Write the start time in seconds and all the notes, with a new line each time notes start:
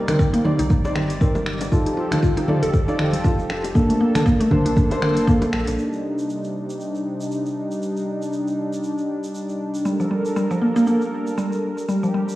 Already playing: C3 G3 D#4 D5
0.08 C4 D#4 A#4, finger snap, closed hi-hat, mid tom, low conga, shaker
0.19 C4, kick, muted conga, shaker
0.34 A#3, closed hi-hat, low bongo, shaker
0.45 C4 D#4 D5, mid tom, high bongo, high conga
0.59 C2 D#4, closed hi-hat, muted conga, low conga, shaker
0.70 A#1 D#4, kick, low bongo, high conga, shaker
0.85 C4 D#4 D5, high bongo, muted conga, shaker
0.95 G1, finger snap, mid tom, high bongo, low bongo, high conga
1.10 closed hi-hat, muted conga, shaker
1.21 C4 D#4 A#4, kick, shaker
1.35 high bongo, low bongo, muted conga, high conga, shaker
1.46 finger snap, high conga
1.61 closed hi-hat, low bongo, shaker
1.72 F3 C4 D#4 F4 G4 A4, kick, muted conga, shaker
1.86 D#4, closed hi-hat, shaker
1.97 F4, muted conga
2.11 D#4 F4 A4, finger snap, closed hi-hat, mid tom, high conga, low conga, shaker
2.22 F4, kick, muted conga, shaker
2.37 D#4, closed hi-hat, low bongo, shaker
2.48 D#4 F4 A4 D5, mid tom, high bongo, high conga, low conga
2.62 F1 A4, closed hi-hat, muted conga, low conga, shaker
2.73 A4, kick, shaker
2.88 D#4 F4 D5, muted conga, shaker
2.99 F1, finger snap, mid tom
3.13 closed hi-hat, muted conga, high conga, shaker
3.24 D#4 F4 A4, kick, shaker
3.39 muted conga, high conga, shaker
3.50 finger snap, low bongo
3.64 closed hi-hat, high bongo, shaker
3.74 A#3 D4 A4, kick, muted conga, shaker
3.90 A3, closed hi-hat, shaker
4.00 A#3, muted conga
4.15 A#3 D4 A4, finger snap, closed hi-hat, mid tom, high conga, low conga, shaker
4.26 A#3, kick, muted conga, shaker
4.41 A3, closed hi-hat, low bongo, shaker
4.50 A#3 D4 C5, kick, mid tom, high bongo, high conga, low conga
4.65 A#1 D4, closed hi-hat, muted conga, low conga, shaker
4.76 F1 D4, kick, low bongo, high conga, shaker
4.91 A#3 D4 C5, closed hi-hat, high bongo, muted conga, shaker
5.01 F1, finger snap, mid tom, high bongo, low bongo, high conga
5.17 closed hi-hat, muted conga, shaker
5.28 F1 A#3 D4 A4, kick, shaker
5.42 closed hi-hat, high bongo, low bongo, muted conga, high conga, shaker
5.53 A#1, finger snap, high conga
5.68 A#1, closed hi-hat, low bongo, shaker
5.79 C3 G3 D4 D#4, shaker
5.93 shaker
6.19 shaker
6.30 shaker
6.44 shaker
6.70 shaker
6.80 shaker
6.95 shaker
7.20 shaker
7.31 shaker
7.46 shaker
7.71 shaker
7.82 shaker
7.97 shaker
8.22 shaker
8.33 shaker
8.48 shaker
8.73 shaker
8.84 shaker
8.98 shaker
9.24 shaker
9.35 shaker
9.49 shaker
9.74 shaker
9.85 G3 A4 A#4, shaker
10.00 F3, shaker
10.11 G3
10.25 shaker
10.36 G3, shaker
10.51 F3, shaker
10.62 A#3
10.76 A#3, shaker
10.87 A#3, shaker
11.02 shaker
11.27 shaker
11.38 G3, shaker
11.53 shaker
11.78 shaker
11.89 G3 G4, shaker
12.03 F3, shaker
12.14 G3
12.29 shaker